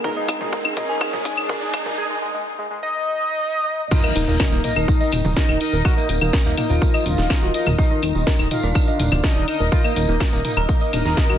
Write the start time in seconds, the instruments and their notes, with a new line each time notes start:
Already playing: ambient pad D#3, synth drone D#3 A#3, riser
0.04 analog polysynth G#3 D#4 G#4, synth arpeggio sound D#4, ambient pad G#4 A#4 D#5, analog synth lead A#4, synth bell A#5, kick, mid tom
0.16 analog synth lead D#4, synth arpeggio sound D#5, synth bell D#5
0.28 synth arpeggio sound D#4, analog synth lead D#4, synth bell D#5, kick, open hi-hat, claves
0.41 synth arpeggio sound D#4, analog synth lead D#4, synth bell D#5, mid tom
0.53 synth arpeggio sound A#4, kick
0.65 analog synth lead D#4, synth arpeggio sound D#4, synth bell D#5, claves
0.77 analog polysynth G#3 D#4 G#4, analog synth lead D#4, synth arpeggio sound D#5, synth bell D#5, kick, mid tom, open hi-hat
0.89 analog synth lead G#4, synth arpeggio sound A#4, synth bell G#5
1.01 synth arpeggio sound D#4, kick, claves
1.13 synth arpeggio sound D#5, mid tom
1.25 synth arpeggio sound D#4, kick, open hi-hat
1.37 synth arpeggio sound D#4, claves
1.49 synth arpeggio sound A#4, kick, mid tom
1.62 synth arpeggio sound D#4
1.74 kick, open hi-hat, claves
1.86 synth arpeggio sound A#4, mid tom
1.98 analog synth lead G#4
2.10 analog synth lead G#3
2.22 analog synth lead G#3
2.34 analog synth lead G#3
2.59 analog synth lead G#3
2.71 analog synth lead G#3
2.83 analog synth lead D#5
3.91 synth arpeggio sound D#4, analog polysynth D#4 A#4 D#5, analog synth lead F4, synth bell F5, kick, crash, tambourine, impact
4.04 analog synth lead A#3, synth bell A#4, synth arpeggio sound D#5, claves
4.15 analog synth bass D#1, analog synth lead A#3, synth arpeggio sound D#4, synth bell A#4, open hi-hat, tambourine
4.28 analog synth bass D#1, analog synth lead A#3, synth arpeggio sound D#4, synth bell A#4, tambourine
4.40 synth arpeggio sound A#4, kick, snare, tambourine, claves
4.52 analog synth bass D#1, analog synth lead A#3, synth arpeggio sound D#4, synth bell A#4, tambourine
4.64 analog synth lead A#3, analog polysynth D#4 A#4 D#5, synth bell A#4, synth arpeggio sound D#5, mid tom, open hi-hat, tambourine
4.76 analog synth bass D#1, analog synth lead D#4, synth arpeggio sound A#4, synth bell D#5, tambourine, claves
4.88 synth arpeggio sound D#4, kick, tambourine
5.00 synth arpeggio sound D#5, tambourine
5.12 analog synth bass D#1, synth arpeggio sound D#4, mid tom, open hi-hat, tambourine, claves
5.25 analog synth bass D#1, synth arpeggio sound D#4, mid tom, tambourine
5.37 analog polysynth D#4 A#4 D#5, synth arpeggio sound A#4, kick, snare, tambourine
5.49 analog synth bass D#1, synth arpeggio sound D#4, claves
5.60 synth arpeggio sound D#4, analog polysynth D#4 A#4 D#5, open hi-hat, tambourine
5.73 analog synth bass D#1, synth arpeggio sound A#4, tambourine
5.85 analog polysynth D#4 A#4 D#5, analog synth lead F#4, synth arpeggio sound A#4, synth bell F#5, kick, tambourine, claves
5.97 analog synth lead A#3, synth bell A#4, synth arpeggio sound D#5, tambourine
6.09 analog synth bass D#1, analog synth lead A#3, synth arpeggio sound D#4, open hi-hat, tambourine
6.21 analog synth bass D#1, analog synth lead A#3, synth arpeggio sound D#4, synth bell A#4, tambourine, claves
6.33 synth arpeggio sound A#4, kick, snare, tambourine
6.45 analog synth bass D#1, analog synth lead A#3, synth arpeggio sound D#4, synth bell A#4, tambourine
6.57 analog synth lead A#3, analog polysynth D#4 A#4 D#5, synth arpeggio sound D#4, synth bell A#4, mid tom, open hi-hat, tambourine, claves
6.69 analog synth bass D#1, analog synth lead F4, synth arpeggio sound A#4, synth bell F5, tambourine
6.82 synth arpeggio sound A#4, kick, tambourine
6.94 synth arpeggio sound D#5, tambourine, claves
7.06 analog synth bass D#1, synth arpeggio sound D4, mid tom, open hi-hat, tambourine
7.18 analog synth bass D#1, synth arpeggio sound D#4, snare, tambourine
7.30 analog polysynth D#4 A#4 D#5, synth arpeggio sound A#4, kick, snare, tambourine, claves
7.42 analog synth bass D#1, synth arpeggio sound F#4
7.54 analog polysynth D#4 A#4 D#5, synth arpeggio sound D#5, open hi-hat, tambourine
7.66 analog synth bass D#1, synth arpeggio sound A#4, mid tom, tambourine, claves
7.78 synth arpeggio sound D#4, analog synth lead D#4, analog polysynth D#4 A#4 D#5, synth bell D#5, kick, tambourine
7.91 analog synth lead D#3, synth bell D#4, synth arpeggio sound D#5
8.02 analog synth bass D#1, analog synth lead D#3, synth arpeggio sound D#4, synth bell D#4, open hi-hat, tambourine, claves
8.15 analog synth bass D#1, analog synth lead D#3, synth arpeggio sound D#4, synth bell D#4, tambourine
8.27 synth arpeggio sound A#4, kick, snare, tambourine
8.39 analog synth bass D#1, analog synth lead D#3, synth bell D#4, synth arpeggio sound D#4, tambourine, claves
8.51 analog synth lead D#3, synth bell D#4, analog polysynth F4 A#4 F5, synth arpeggio sound D#5, mid tom, open hi-hat, tambourine
8.63 analog synth bass D#1, analog synth lead D4, synth arpeggio sound A#4, synth bell D5, tambourine
8.75 synth arpeggio sound D#4, kick, tambourine, claves
8.87 synth arpeggio sound D#5, tambourine
8.99 analog synth bass D#1, synth arpeggio sound D#4, mid tom, open hi-hat, tambourine
9.11 analog synth bass D#1, synth arpeggio sound D#4, mid tom, tambourine, claves
9.24 analog polysynth D#4 A#4 D#5, synth arpeggio sound A#4, kick, snare, tambourine
9.36 analog synth bass D#1, synth arpeggio sound D#4
9.48 synth arpeggio sound D#4, analog polysynth D#4 A#4 D#5, open hi-hat, tambourine, claves
9.60 analog synth bass D#1, synth arpeggio sound A#4, tambourine
9.72 analog polysynth D#4 A#4 D#5, analog synth lead F4, synth arpeggio sound A#4, synth bell F5, kick, tambourine
9.84 analog synth lead A#3, synth bell A#4, synth arpeggio sound D#5, tambourine, claves
9.96 analog synth bass D#1, analog synth lead A#3, synth arpeggio sound D#4, synth bell A#4, open hi-hat, tambourine
10.09 analog synth bass D#1, analog synth lead A#3, synth arpeggio sound D#4, synth bell A#4, tambourine
10.20 synth arpeggio sound A#4, kick, snare, tambourine, claves
10.33 analog synth bass D#1, analog synth lead A#3, synth arpeggio sound D#4, synth bell A#4, tambourine
10.45 analog synth lead A#3, analog polysynth D#4 A#4 D#5, synth arpeggio sound D#4, synth bell A#4, mid tom, open hi-hat, tambourine
10.57 analog synth bass D#1, analog synth lead A#4, synth arpeggio sound A#4, synth bell A#5, tambourine, claves
10.69 synth arpeggio sound A#4, kick, tambourine
10.81 synth arpeggio sound D#5, tambourine
10.93 analog synth bass D#1, synth arpeggio sound D4, analog polysynth D#4 A#4 D#5, mid tom, open hi-hat, tambourine, claves
11.05 analog synth bass D#1, synth arpeggio sound D#4, snare, tambourine
11.17 synth arpeggio sound A#4, kick, snare, tambourine
11.29 analog synth bass D#1, synth arpeggio sound F#4, claves